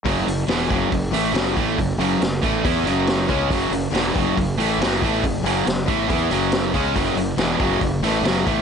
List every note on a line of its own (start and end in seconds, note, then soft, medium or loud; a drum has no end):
0.05 0.25 F#1 loud
0.05 0.26 F#2 medium
0.05 0.26 C#3 medium
0.05 0.27 F#3 medium
0.05 kick loud
0.05 open hi-hat medium
0.27 0.47 F#1 medium
0.27 0.44 F#2 medium
0.27 0.44 C#3 medium
0.27 open hi-hat medium
0.48 0.68 E1 medium
0.48 0.67 E2 medium
0.48 0.69 B2 medium
0.48 0.69 E3 loud
0.48 snare loud
0.48 open hi-hat medium
0.68 0.91 F#1 medium
0.68 0.88 F#2 medium
0.68 0.89 C#3 medium
0.68 0.91 F#3 medium
0.68 kick loud
0.68 open hi-hat medium
0.89 1.11 F#1 medium
0.89 1.08 F#2 medium
0.89 1.08 C#3 medium
0.89 kick medium
0.89 open hi-hat medium
1.11 1.32 A1 medium
1.11 1.33 A2 medium
1.11 1.33 E3 medium
1.11 1.34 A3 loud
1.11 open hi-hat medium
1.32 1.54 F#1 loud
1.32 1.54 F#2 medium
1.32 1.54 C#3 medium
1.32 1.55 F#3 medium
1.32 open hi-hat medium
1.36 snare loud
1.54 1.76 A1 medium
1.54 1.76 A2 medium
1.54 1.77 E3 medium
1.54 1.78 A3 loud
1.54 kick loud
1.54 open hi-hat medium
1.76 1.97 F#1 medium
1.76 1.94 F#2 medium
1.76 1.95 C#3 medium
1.76 kick medium
1.76 open hi-hat medium
1.98 2.19 F#1 medium
1.98 2.20 F#2 medium
1.98 2.20 C#3 medium
1.98 2.21 F#3 loud
1.98 open hi-hat medium
2.21 2.41 F#1 medium
2.21 2.39 F#2 medium
2.21 2.38 C#3 medium
2.21 snare loud
2.21 open hi-hat medium
2.43 2.63 A1 medium
2.43 2.63 A2 medium
2.43 2.63 E3 medium
2.43 2.64 A3 medium
2.43 kick loud
2.43 open hi-hat medium
2.64 2.83 E2 medium
2.64 2.85 E3 medium
2.64 2.85 B3 loud
2.64 2.86 E4 medium
2.64 kick loud
2.64 open hi-hat medium
2.84 3.25 F#1 medium
2.84 3.28 F#2 medium
2.84 3.27 C#3 medium
2.84 open hi-hat soft
2.88 3.29 F#3 medium
3.07 snare loud
3.07 open hi-hat medium
3.28 3.49 C#2 medium
3.28 3.50 C#3 medium
3.28 3.50 G#3 medium
3.28 3.50 C#4 loud
3.28 kick loud
3.28 open hi-hat medium
3.50 3.70 F#1 loud
3.50 3.71 F#2 medium
3.50 3.72 C#3 medium
3.50 3.72 F#3 loud
3.50 kick loud
3.50 open hi-hat medium
3.71 3.91 F#1 medium
3.71 3.90 F#2 medium
3.71 3.90 C#3 medium
3.71 open hi-hat medium
3.91 4.13 E1 medium
3.91 4.13 E2 medium
3.91 4.13 B2 medium
3.91 4.14 E3 loud
3.95 snare medium
3.95 open hi-hat medium
4.14 4.36 F#1 loud
4.14 4.36 F#2 medium
4.14 4.36 C#3 medium
4.14 4.37 F#3 medium
4.14 kick loud
4.14 open hi-hat medium
4.37 4.56 F#1 medium
4.37 4.54 F#2 medium
4.37 4.54 C#3 medium
4.37 kick medium
4.37 open hi-hat medium
4.56 4.78 A1 medium
4.56 4.80 A2 medium
4.56 4.80 E3 loud
4.56 4.80 A3 loud
4.56 open hi-hat medium
4.78 4.99 F#1 medium
4.78 5.02 F#2 medium
4.78 5.01 C#3 medium
4.78 open hi-hat medium
4.83 5.02 F#3 loud
4.83 snare loud
5.02 5.22 A1 medium
5.02 5.23 A2 medium
5.02 5.23 E3 medium
5.02 5.24 A3 loud
5.02 kick medium
5.02 open hi-hat medium
5.23 5.43 F#1 medium
5.23 5.40 F#2 medium
5.23 5.41 C#3 medium
5.23 kick medium
5.23 open hi-hat medium
5.43 5.64 F#1 loud
5.43 5.65 F#2 medium
5.43 5.65 C#3 medium
5.43 5.66 F#3 medium
5.43 open hi-hat medium
5.66 5.86 F#1 medium
5.66 5.84 F#2 medium
5.66 5.84 C#3 medium
5.66 snare loud
5.66 open hi-hat medium
5.86 6.08 A1 loud
5.86 6.08 A2 medium
5.86 6.07 E3 medium
5.86 6.09 A3 loud
5.86 kick loud
5.86 open hi-hat medium
6.08 6.29 E2 medium
6.08 6.30 E3 medium
6.08 6.30 B3 medium
6.08 6.30 E4 medium
6.08 kick loud
6.08 open hi-hat medium
6.29 6.71 F#1 medium
6.29 6.73 F#2 medium
6.29 6.73 C#3 medium
6.29 6.74 F#3 medium
6.29 open hi-hat soft
6.52 snare loud
6.52 open hi-hat medium
6.74 6.94 C#2 medium
6.74 6.94 C#3 medium
6.74 6.95 G#3 medium
6.74 6.96 C#4 medium
6.74 kick loud
6.74 open hi-hat medium
6.95 7.15 F#1 medium
6.95 7.15 F#2 medium
6.95 7.15 C#3 medium
6.95 7.17 F#3 loud
6.95 kick medium
6.95 open hi-hat medium
7.15 7.36 F#1 medium
7.15 7.34 F#2 medium
7.15 7.34 C#3 medium
7.15 open hi-hat medium
7.37 7.58 E1 medium
7.37 7.58 E2 medium
7.37 7.59 B2 medium
7.37 7.60 E3 medium
7.37 snare loud
7.37 open hi-hat medium
7.58 7.80 F#1 medium
7.58 7.79 F#2 medium
7.58 7.80 C#3 medium
7.58 7.81 F#3 loud
7.58 kick loud
7.58 open hi-hat medium
7.80 8.01 F#1 medium
7.80 7.99 F#2 medium
7.80 7.99 C#3 medium
7.80 kick medium
7.80 open hi-hat medium
8.01 8.21 A1 medium
8.01 8.22 A2 medium
8.01 8.24 E3 loud
8.01 8.25 A3 medium
8.01 snare soft
8.01 open hi-hat medium
8.22 8.43 F#1 medium
8.22 8.45 F#2 medium
8.22 8.43 C#3 medium
8.22 8.44 F#3 loud
8.22 open hi-hat medium
8.26 snare loud
8.44 8.62 A1 medium
8.44 8.62 A2 medium
8.44 8.62 E3 loud
8.44 8.62 A3 medium
8.44 kick loud
8.44 open hi-hat medium